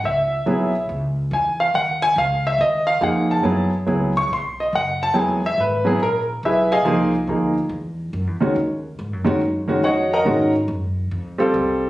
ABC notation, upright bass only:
X:1
M:4/4
L:1/8
Q:"Swing" 1/4=141
K:C#mix
V:1 name="Upright bass" clef=bass
C,,2 B,,,2 C,,2 =E,,2 | D,,2 C,,2 D,,2 E,,2 | F,,2 C,,2 B,,,2 F,,,2 | =E,,,2 G,,,2 A,,,2 B,,,2 |
=C,,2 =D,,2 =E,,2 (3F,, E,, D,, | D,,2 (3G,, F,, D,, F,,2 E,,2 | G,,2 F,,2 =F,,2 =C,,2 |]